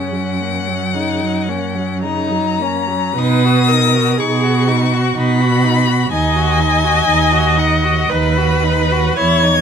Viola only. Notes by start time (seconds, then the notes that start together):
Already playing: C#3
0.13 F#3
0.40 A#3
0.68 F#3
0.94 C#3
1.22 F#3
1.48 A#3
1.75 F#3
2.03 C#3
2.30 F#3
2.60 A#3
2.88 F#3
3.16 B4
3.68 A#4
4.17 G#4
4.67 F#4
6.12 D#5
8.10 B4
9.17 C#5